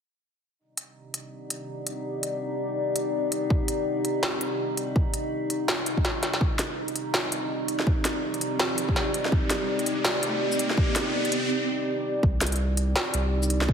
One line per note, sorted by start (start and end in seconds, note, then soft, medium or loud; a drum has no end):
0.59 6.37 C4 medium
0.59 6.39 D#4 medium
0.59 6.37 D#4 medium
0.59 6.37 G4 medium
0.59 6.37 D5 medium
0.77 closed hi-hat medium
1.14 closed hi-hat medium
1.50 closed hi-hat medium
1.87 closed hi-hat medium
2.23 closed hi-hat medium
2.96 closed hi-hat medium
3.32 closed hi-hat medium
3.50 kick loud
3.68 closed hi-hat medium
4.05 closed hi-hat medium
4.23 snare loud
4.41 closed hi-hat medium
4.77 closed hi-hat medium
4.96 kick loud
5.14 closed hi-hat medium
5.50 closed hi-hat medium
5.68 snare loud
5.86 closed hi-hat medium
5.97 kick medium
6.05 snare medium
6.23 snare medium
6.23 closed hi-hat medium
6.34 snare medium
6.40 12.19 C4 medium
6.40 11.50 D#4 medium
6.40 12.19 D#4 medium
6.40 12.19 G4 medium
6.40 12.19 D5 medium
6.40 kick loud
6.40 riser medium
6.59 snare medium
6.59 closed hi-hat medium
6.88 closed hi-hat soft
6.96 closed hi-hat medium
7.14 snare loud
7.32 closed hi-hat medium
7.68 closed hi-hat medium
7.80 snare medium
7.87 kick loud
8.05 snare medium
8.05 closed hi-hat medium
8.34 closed hi-hat soft
8.41 closed hi-hat medium
8.59 snare loud
8.78 closed hi-hat medium
8.89 kick medium
8.96 snare medium
9.14 closed hi-hat medium
9.25 snare medium
9.32 kick loud
9.50 snare medium
9.50 closed hi-hat medium
9.50 shaker soft
9.79 closed hi-hat soft
9.86 closed hi-hat medium
10.05 snare loud
10.23 closed hi-hat medium
10.52 shaker medium
10.59 closed hi-hat medium
10.70 snare soft
10.78 kick loud
10.96 snare medium
10.96 closed hi-hat medium
10.96 shaker soft
11.25 closed hi-hat soft
11.32 closed hi-hat medium
12.23 12.95 C2 loud
12.23 13.73 C4 medium
12.23 13.73 D#4 medium
12.23 13.73 G4 medium
12.23 13.73 D5 medium
12.23 kick loud
12.41 snare medium
12.41 closed hi-hat medium
12.41 shaker soft
12.47 closed hi-hat medium
12.52 closed hi-hat medium
12.56 closed hi-hat soft
12.77 closed hi-hat medium
12.96 snare loud
13.14 13.67 C2 loud
13.14 closed hi-hat medium
13.43 shaker medium
13.50 closed hi-hat medium
13.61 snare medium
13.69 13.73 C2 loud
13.69 kick loud